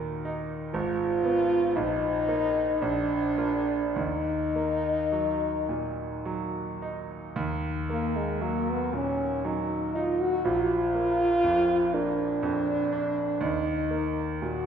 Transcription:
Already playing: grand piano D#2 A#2 D#3 A#3, french horn F#4
0.25 grand piano D#4
0.74 grand piano G#1, french horn F4
1.24 grand piano B3
1.76 grand piano A#1, french horn D#4
2.28 grand piano A#3 D#4
2.81 grand piano A#1, french horn D4
3.37 grand piano A#3 F4
3.96 grand piano D#2, french horn D#4
4.55 grand piano A#3
5.12 grand piano F#3
5.69 grand piano A#2
6.25 grand piano F#3
6.82 grand piano D#4
7.36 grand piano D#2
7.89 grand piano A#3, french horn A#3
8.16 french horn G#3
8.41 grand piano F#3, french horn A#3
8.70 french horn B3
8.93 grand piano A#2, french horn C#4
9.44 grand piano F#3, french horn D#4
9.95 grand piano D#4, french horn F4
10.20 french horn F#4
10.45 grand piano A#1, french horn F4
10.95 grand piano A#3
11.44 grand piano F2
11.93 grand piano A#3, french horn D4
12.43 grand piano F2
12.92 grand piano D4
13.41 grand piano D#2, french horn D#4
13.90 grand piano A#3
14.42 grand piano A#2, french horn F#4

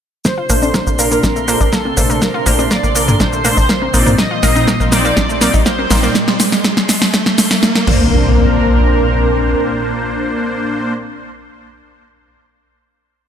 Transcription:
0.25 analog synth pad C3 C4 D4, synth arpeggio sound A#3, analog synth lead C5, synth texture C6, kick, snare, riser, cabasa
0.38 synth arpeggio sound F4
0.50 analog synth bass A#1, supersaw synth A#2 A3 D4 C5, synth arpeggio sound A#3, open hi-hat, cabasa
0.62 synth arpeggio sound D4, high conga, cabasa
0.74 synth arpeggio sound A#3, kick, snare, cabasa
0.87 analog synth bass A#1, synth arpeggio sound A#3, cabasa
0.99 supersaw synth A#2 A#3 D4 A#4, synth arpeggio sound A#3, analog synth lead A#4, open hi-hat, cabasa
1.11 synth arpeggio sound A#3, cabasa
1.23 analog synth bass A#1, synth arpeggio sound D4, kick, snare, high conga, cabasa
1.36 synth arpeggio sound A3, cabasa
1.48 supersaw synth A#2 A3 D4 C5, synth arpeggio sound A#3, open hi-hat, cabasa
1.61 analog synth bass A#1, synth arpeggio sound D4, cabasa
1.73 synth arpeggio sound A#3, analog synth lead A4, kick, snare, cabasa
1.85 synth arpeggio sound A#3, high conga
1.97 analog synth bass A#1, supersaw synth A#2 A3 D4 C5, synth arpeggio sound A#3, open hi-hat, cabasa
2.10 synth arpeggio sound A#3, cabasa
2.22 synth arpeggio sound A#3, analog synth lead A#4, kick, snare, cabasa
2.34 synth arpeggio sound F4
2.46 analog synth bass A#1, supersaw synth A#2 A3 D4 C5, synth arpeggio sound A#3, open hi-hat, cabasa
2.59 synth arpeggio sound D4, high conga, cabasa
2.71 synth arpeggio sound A#3, analog synth lead D5, kick, snare, cabasa
2.83 analog synth bass A#1, synth arpeggio sound A#3, cabasa
2.95 supersaw synth A#2 D4 A4 A#4, synth arpeggio sound A#3, open hi-hat, cabasa
3.08 synth arpeggio sound A#3, mid tom, cabasa
3.20 analog synth bass A#1, synth arpeggio sound D4, analog synth lead C5, kick, snare, high conga, cabasa
3.33 synth arpeggio sound A3, cabasa
3.45 supersaw synth A#2 A3 D4 C5, synth arpeggio sound A#3, open hi-hat, cabasa
3.57 analog synth bass A#1, synth arpeggio sound D4, cabasa
3.69 synth arpeggio sound A#3, kick, snare, cabasa
3.82 synth arpeggio sound A#3, high conga
3.94 analog synth bass A#1, supersaw synth A#2 C4 D#4 D5, synth arpeggio sound A#3, open hi-hat, cabasa
4.06 synth arpeggio sound A#3, mid tom, cabasa
4.18 analog synth pad G3 C4 D#4, synth arpeggio sound A#3, analog synth lead D#5, kick, snare, cabasa
4.31 synth arpeggio sound F4
4.43 analog synth bass A#1, supersaw synth A#2 C4 D#4 D#5, synth arpeggio sound A#3, snare, open hi-hat, cabasa
4.56 synth arpeggio sound D#4, high conga, cabasa
4.68 synth arpeggio sound A#3, kick, snare, cabasa
4.80 analog synth bass A#1, synth arpeggio sound A#3, cabasa
4.92 supersaw synth A#2 C4 D#4 C5, synth arpeggio sound A#3, analog synth lead D5, snare, open hi-hat, cabasa
5.05 synth arpeggio sound A#3, cabasa
5.17 analog synth bass A#1, synth arpeggio sound D4, kick, snare, high conga, cabasa
5.29 synth arpeggio sound A3, cabasa
5.41 supersaw synth A#2 C4 D#4 D5, synth arpeggio sound A#3, snare, open hi-hat, cabasa
5.54 analog synth bass A#1, synth arpeggio sound D#4, cabasa
5.66 synth arpeggio sound A#3, analog synth lead C5, kick, snare, cabasa
5.79 synth arpeggio sound A#3, high conga
5.91 analog synth bass A#1, supersaw synth A#2 C4 D#4 D5, synth arpeggio sound A#3, snare, open hi-hat, cabasa
6.03 synth arpeggio sound A#3, cabasa
6.15 kick, snare, cabasa
6.28 snare
6.40 snare, open hi-hat, cabasa
6.52 snare, cabasa
6.64 kick, snare, cabasa
6.77 snare, cabasa
6.89 snare, open hi-hat, cabasa
7.02 snare, cabasa
7.14 kick, snare, cabasa
7.26 snare, cabasa
7.38 snare, open hi-hat, cabasa
7.51 snare, cabasa
7.63 kick, snare, cabasa
7.75 snare, cabasa
7.87 analog synth bass A#1, analog synth pad A#2 A#3 C4 D4, synth arpeggio sound A#3, supersaw synth A#3 D4 C5, analog synth lead A#4, kick, crash, impact

